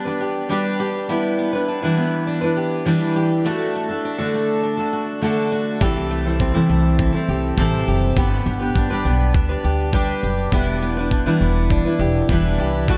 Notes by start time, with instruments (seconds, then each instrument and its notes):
Already playing: steel-string acoustic guitar G3 B3 D4 G4
0.05 steel-string acoustic guitar D4 G4 B4
0.21 steel-string acoustic guitar G4
0.49 steel-string acoustic guitar G3 D4 G4 B4
0.80 steel-string acoustic guitar G4
1.08 steel-string acoustic guitar G3 B3 D4 E4 G4 B4
1.39 steel-string acoustic guitar B3
1.53 steel-string acoustic guitar D4 E4 B4
1.68 steel-string acoustic guitar D4
1.82 steel-string acoustic guitar E3 G3 D4 E4 B4
1.98 steel-string acoustic guitar B3
2.27 steel-string acoustic guitar D4
2.41 steel-string acoustic guitar D4 E4 B4
2.57 steel-string acoustic guitar G4
2.86 steel-string acoustic guitar E3 G3 D4 E4 B4
3.16 steel-string acoustic guitar G4
3.44 steel-string acoustic guitar A3 D4 F#4 A4
3.75 steel-string acoustic guitar A3
3.88 steel-string acoustic guitar D4 F#4 A4
4.05 steel-string acoustic guitar D4
4.18 steel-string acoustic guitar D3 A3 D4 F#4 A4
4.34 steel-string acoustic guitar A3
4.63 steel-string acoustic guitar D4
4.77 steel-string acoustic guitar D4 F#4 A4
4.93 steel-string acoustic guitar F#4
5.21 steel-string acoustic guitar D3 A3 D4 F#4 A4
5.52 steel-string acoustic guitar F#4
5.81 upright bass C2, steel-string acoustic guitar E3 G3 C4 E4 G4 A4, kick
6.11 steel-string acoustic guitar A3
6.25 steel-string acoustic guitar G3 C4 E4 A4
6.40 steel-string acoustic guitar C4, kick
6.54 steel-string acoustic guitar C3 E3 G3 C4 E4 A4
6.69 upright bass C2, steel-string acoustic guitar A3
6.99 steel-string acoustic guitar C4, kick
7.12 steel-string acoustic guitar G3 C4 E4 A4
7.29 upright bass C2, steel-string acoustic guitar G4
7.57 upright bass A1, steel-string acoustic guitar C3 E3 G3 C4 E4 A4, kick
7.87 upright bass F#1, steel-string acoustic guitar G4
8.16 upright bass G1, steel-string acoustic guitar G3 B3 D4 G4 B4, kick
8.46 upright bass G1, steel-string acoustic guitar B3
8.60 steel-string acoustic guitar D4 G4 B4
8.76 upright bass G1, steel-string acoustic guitar D4, kick
8.90 steel-string acoustic guitar G3 D4 G4 B4
9.05 upright bass B1, steel-string acoustic guitar B3
9.34 upright bass D2, steel-string acoustic guitar D4, kick
9.49 steel-string acoustic guitar D4 G4 B4
9.64 upright bass D2, steel-string acoustic guitar G4
9.92 steel-string acoustic guitar G3 D4 G4 B4, kick
10.23 upright bass F#1, steel-string acoustic guitar G4
10.52 upright bass E1, steel-string acoustic guitar G3 B3 D4 E4 G4 B4, kick
10.82 steel-string acoustic guitar B3
10.97 steel-string acoustic guitar D4 E4 B4
11.11 steel-string acoustic guitar D4, kick
11.26 steel-string acoustic guitar E3 G3 D4 E4 B4
11.41 upright bass E1, steel-string acoustic guitar B3
11.70 steel-string acoustic guitar D4, kick
11.85 steel-string acoustic guitar D4 E4 B4
11.99 upright bass E1, steel-string acoustic guitar G4
12.29 upright bass E1, steel-string acoustic guitar E3 G3 D4 E4 B4, kick
12.58 upright bass C2, steel-string acoustic guitar G4
12.88 upright bass D2, steel-string acoustic guitar A3 D4 F#4 A4, kick